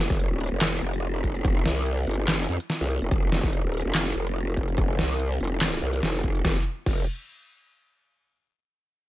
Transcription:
0.10 F1, kick
0.20 closed hi-hat
0.31 D#1
0.41 closed hi-hat
0.44 closed hi-hat
0.47 closed hi-hat
0.52 F1
0.61 snare, clap, closed hi-hat
0.82 F1, closed hi-hat
0.94 closed hi-hat
1.24 kick, closed hi-hat
1.35 closed hi-hat
1.45 kick, closed hi-hat
1.66 C2, snare, closed hi-hat
1.86 closed hi-hat
2.07 G1, closed hi-hat
2.11 closed hi-hat
2.14 closed hi-hat
2.28 snare, clap, closed hi-hat
2.49 F2, closed hi-hat
2.60 closed hi-hat
2.70 snare
2.81 C2
2.91 closed hi-hat
3.02 F1, closed hi-hat
3.11 F1, kick, closed hi-hat
3.32 F1, snare, closed hi-hat
3.43 F1, kick
3.53 closed hi-hat
3.64 D#1
3.74 closed hi-hat
3.78 closed hi-hat
3.81 closed hi-hat
3.85 F1
3.95 snare, clap, closed hi-hat
4.16 F1, closed hi-hat
4.27 closed hi-hat
4.57 kick, closed hi-hat
4.68 closed hi-hat
4.78 kick, closed hi-hat
4.99 C2, snare, closed hi-hat
5.20 closed hi-hat
5.41 F1, closed hi-hat
5.44 closed hi-hat
5.47 closed hi-hat
5.61 snare, clap, closed hi-hat
5.82 C2, closed hi-hat
5.93 closed hi-hat
6.03 F1, snare
6.24 kick, closed hi-hat
6.35 closed hi-hat
6.45 F1, kick, snare
6.86 F1, kick, crash

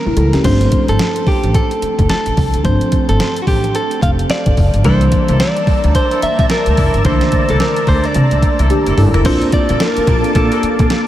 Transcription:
Already playing: E3 G3 A#3 C#4 A#4
0.06 A#1 E4 A#4
0.17 C#2 E4 A4, closed hi-hat
0.33 D2 C#4 G4, snare, closed hi-hat
0.43 G1 F3 A3 C4 D4 C5, kick, closed hi-hat, crash
0.61 closed hi-hat
0.72 kick, closed hi-hat
0.88 G1 A4, closed hi-hat
0.99 snare, closed hi-hat
1.16 closed hi-hat
1.27 G4, muted upright bass stroke, kick, open hi-hat
1.44 A1, closed hi-hat
1.54 A4, kick, closed hi-hat
1.71 closed hi-hat
1.82 muted upright bass stroke, closed hi-hat
1.99 F1, kick, closed hi-hat
2.10 A4, snare, closed hi-hat
2.26 A1, closed hi-hat
2.37 C2, kick, open hi-hat
2.54 D2, closed hi-hat
2.63 G1 F3 A3 C4 D4 C5, kick, closed hi-hat
2.81 closed hi-hat
2.92 kick, closed hi-hat
3.09 G1 A4, closed hi-hat
3.20 snare, closed hi-hat
3.36 closed hi-hat
3.42 F#4
3.47 A1 G4, kick, open hi-hat
3.64 closed hi-hat
3.75 A4, closed hi-hat
3.91 closed hi-hat
4.02 F1 F5, kick, closed hi-hat
4.19 closed hi-hat
4.30 D5, snare, closed hi-hat
4.46 G1, kick, closed hi-hat
4.57 F1, kick, open hi-hat
4.74 G1, closed hi-hat
4.84 C2 E3 G3 A#3 D4 E4 A4 C5 D5 A5 A#5 E6, kick, closed hi-hat
5.01 closed hi-hat
5.12 kick, closed hi-hat
5.28 C2 A#3 D4 E4 A4, closed hi-hat
5.40 D5, snare, closed hi-hat
5.57 closed hi-hat
5.67 muted upright bass stroke, kick, open hi-hat
5.84 D2, closed hi-hat
5.95 C5, kick, closed hi-hat
6.11 A#3 D4 E4 A4, closed hi-hat
6.22 E5, muted upright bass stroke, closed hi-hat
6.39 A#1 E5, kick, closed hi-hat
6.50 A#4, snare, closed hi-hat
6.66 D2, closed hi-hat
6.77 F1 A#3 D4 E4 A4, kick, open hi-hat
6.94 G1, closed hi-hat
7.04 C2 D3 A3 A#3 D4 E4 A4 C5, kick, closed hi-hat
7.11 E3
7.21 snare, closed hi-hat
7.32 kick, closed hi-hat
7.49 C2 A#3 D4 E4 A4, closed hi-hat
7.60 A#4, snare, closed hi-hat
7.76 closed hi-hat
7.87 D2 C5, kick, open hi-hat
8.04 D5, closed hi-hat
8.14 C3, closed hi-hat
8.31 C2, closed hi-hat
8.42 kick, closed hi-hat
8.59 C2 A#3 D4 E4 A4, closed hi-hat
8.70 D4 G4, closed hi-hat, high tom
8.86 F1 A#3 D4 E4 A4, closed hi-hat
8.97 G1 E4 A4, mid tom, open hi-hat
9.14 F1 A#3 D4 E4 A4 A#4, closed hi-hat, floor tom
9.24 A#1 A#3 C4 D4 F4 A4 C5 A5 D6, kick, closed hi-hat, crash
9.42 closed hi-hat
9.52 D5, muted upright bass stroke, kick, closed hi-hat
9.69 A#2 A#3 D4 A4, closed hi-hat
9.80 A#4, snare, closed hi-hat
9.97 muted upright bass stroke, closed hi-hat
10.07 A#1, kick, closed hi-hat
10.22 A4, closed hi-hat
10.35 A#2 A4, kick, closed hi-hat
10.52 A#3 D4 A4, closed hi-hat
10.63 muted upright bass stroke, closed hi-hat
10.79 A#2, kick, closed hi-hat
10.90 snare, closed hi-hat

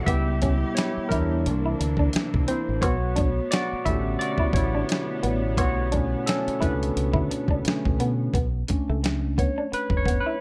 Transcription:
Already playing: E4
0.06 C#2 B2 G3 B3 E4 G4 E5, kick, closed hi-hat
0.42 C#4, kick, closed hi-hat
0.75 E4 C#5, snare, closed hi-hat
0.98 muted fingered electric bass stroke
1.09 E2 D4 E4 A#4, kick, closed hi-hat
1.45 C2 C3 E3 A#3 D4, closed hi-hat
1.66 E4
1.80 D2, muted clean electric guitar stroke, closed hi-hat
1.97 D4, kick
2.13 muted fingered electric bass stroke, snare, closed hi-hat
2.34 C2, kick
2.48 C4 E4 C5, closed hi-hat
2.69 A1
2.81 B1 B2 A3 B3 F#4 C#5, kick, closed hi-hat
3.16 D4, kick, closed hi-hat
3.51 F#4 D5, snare, closed hi-hat
3.73 muted fingered electric bass stroke
3.85 A1 D3 A3 C#4 E4 G4 E5, kick, closed hi-hat
4.19 F#4 D5, closed hi-hat
4.38 E4, kick
4.53 A1 E4 C#5, muted clean electric guitar stroke, kick, closed hi-hat
4.75 D4
4.89 snare, closed hi-hat
5.23 A1 B3, closed hi-hat
5.57 B1 B3 F#4 C#5, kick, closed hi-hat
5.92 B2 A3 C#4 D4, kick, closed hi-hat
6.26 C#4 A4, snare, closed hi-hat
6.48 muted fingered electric bass stroke, closed hi-hat
6.61 C#2 D4 E4 B4, kick, closed hi-hat
6.83 closed hi-hat
6.96 C#2, closed hi-hat
7.13 D2 E4, kick
7.31 muted clean electric guitar stroke, closed hi-hat
7.48 C#2 D4, kick
7.65 D3 A3 C#4, muted fingered electric bass stroke, snare, closed hi-hat
7.85 B1, kick
7.99 B2 B3, closed hi-hat
8.34 B1 B3, kick, closed hi-hat
8.68 A3 C#4 D4, muted clean electric guitar stroke, kick, closed hi-hat
8.89 C#2 A3
9.04 muted clean electric guitar stroke, snare, closed hi-hat
9.38 B3 C#5, kick, closed hi-hat
9.58 D4
9.72 B4, muted clean electric guitar stroke, muted fingered electric bass stroke, closed hi-hat
9.90 F#1, kick
9.97 C#5
10.06 B3, kick, closed hi-hat
10.20 B4
10.26 E4

